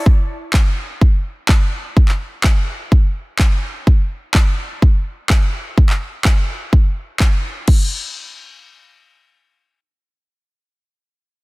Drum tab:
CC |----------------|----------------|----------------|----------------|
CP |----x-------x---|-x--x-------x---|----x-------x---|-x--x-------x---|
BD |o---o---o---o---|o---o---o---o---|o---o---o---o---|o---o---o---o---|

CC |x---------------|----------------|
CP |----------------|----------------|
BD |o---------------|----------------|